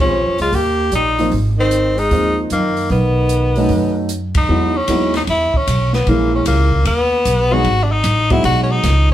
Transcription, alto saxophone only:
0.00 0.36 F3 medium
0.40 0.54 G#3 medium
0.53 0.92 A#3 medium
0.92 1.29 G3 medium
1.58 1.99 D#3 medium
1.97 2.37 G#3 medium
2.52 2.88 D#3 medium
2.91 4.05 D#3 medium

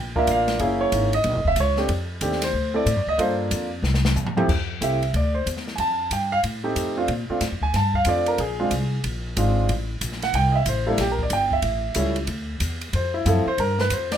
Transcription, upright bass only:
0.00 0.26 A#1 medium
0.27 0.59 A1 medium
0.60 0.91 F#1 medium
0.92 1.23 G#1 medium
1.24 1.35 A#1 medium
1.35 1.45 F#1 medium
1.45 1.56 E1 medium
1.56 1.88 C#2 medium
1.89 2.20 F2 medium
2.21 2.53 D#2 medium
2.54 2.85 D2 medium
2.86 2.96 A2 medium
2.96 3.06 F#2 medium
3.07 3.17 D2 medium
3.18 3.50 G2 medium
3.51 3.82 F2 medium
3.83 4.14 C2 medium
4.15 4.47 E2 medium
4.49 4.80 F2 medium
4.81 5.12 C2 medium
5.14 5.45 D2 medium
5.46 5.77 E2 medium
5.79 6.10 F2 medium
6.11 6.42 G2 medium
6.43 6.75 A2 medium
6.76 7.07 F2 medium
7.08 7.28 A#2 medium
7.30 muted upright bass stroke soft
7.41 7.53 A2 medium
7.52 7.62 F2 medium
7.62 7.72 D2 medium
7.74 8.05 G2 medium
8.05 8.37 F2 medium
8.38 8.70 A#1 medium
8.71 9.02 C2 medium
9.04 9.35 A#1 medium
9.37 9.68 G#1 medium
9.69 10.00 A1 medium
10.01 10.33 A#1 medium
10.33 10.65 C2 medium
10.66 10.97 A1 medium
10.98 11.30 A#1 medium
11.30 11.62 G1 medium
11.62 11.94 A1 medium
11.95 12.27 C#2 medium
12.27 12.59 D2 medium
12.60 12.92 E2 medium
12.93 13.25 F2 medium
13.25 13.45 F#2 medium
13.46 muted upright bass stroke soft
13.58 13.89 G2 medium
13.90 14.17 F2 medium

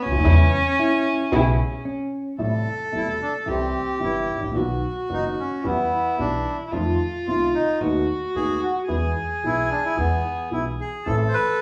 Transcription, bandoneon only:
2.96 3.08 E4 medium
3.22 3.34 D4 medium
3.49 3.99 C4 medium
4.03 4.41 E4 medium
5.13 5.25 D#4 medium
5.40 5.66 C#4 medium
5.66 6.16 B3 medium
6.20 6.57 D4 medium
7.27 7.52 F4 medium
7.55 7.79 D#4 medium
8.36 8.61 G#4 medium
8.63 8.75 F#4 medium
9.45 9.70 E4 medium
9.70 9.83 D4 medium
9.85 9.97 E4 medium
9.98 10.49 B3 medium
10.53 10.65 E4 medium
10.81 11.08 G#4 medium
11.07 11.16 A4 medium
11.28 11.35 C5 medium
11.34 11.62 B4 medium

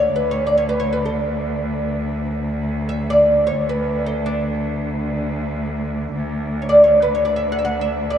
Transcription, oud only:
0.00 0.15 C#5 medium
0.16 0.32 B4 medium
0.31 0.45 C#5 medium
0.47 0.57 D5 medium
0.58 0.69 C#5 medium
0.69 0.80 B4 medium
0.80 0.92 C#5 medium
0.93 1.05 B4 medium
1.05 2.23 A4 medium
2.89 3.10 E5 medium
3.10 3.46 D5 medium
3.47 3.68 C#5 medium
3.69 4.06 B4 medium
4.06 4.28 A4 medium
4.26 5.39 D4 medium
6.62 6.66 C#5 medium
6.69 6.83 D5 medium
6.84 7.00 C#5 medium
7.02 7.14 B4 medium
7.15 7.25 C#5 medium
7.25 7.36 D5 medium
7.36 7.49 E5 medium
7.52 7.57 F#5 medium
7.59 7.63 E5 medium
7.65 7.79 F#5 medium
7.81 8.09 E5 medium
8.10 8.18 D5 medium

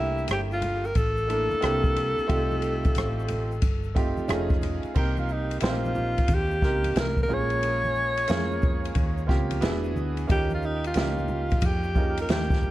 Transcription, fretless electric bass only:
0.00 0.26 C2 loud
0.29 0.92 G1 medium
0.96 1.48 A1 medium
1.53 muted fretless electric bass stroke soft
1.63 2.15 C2 medium
2.19 muted fretless electric bass stroke soft
2.29 2.93 C2 loud
2.96 3.59 A1 medium
3.63 4.15 G1 medium
4.18 muted fretless electric bass stroke medium
4.29 4.82 F1 loud
4.84 muted fretless electric bass stroke soft
4.96 5.59 C2 loud
5.62 6.15 A#1 medium
6.29 6.61 D#2 medium
6.62 6.94 C#2 medium
6.96 7.28 C2 medium
7.30 8.25 A#1 medium
8.30 8.93 F2 medium
8.95 9.31 D#2 medium
9.29 9.61 C#2 medium
9.62 9.94 E1 loud
9.96 10.27 D2 medium
10.30 10.93 D#2 loud
10.96 11.59 C#2 medium
11.62 12.26 F2 medium
12.29 12.61 D#2 medium
12.62 12.71 G1 medium

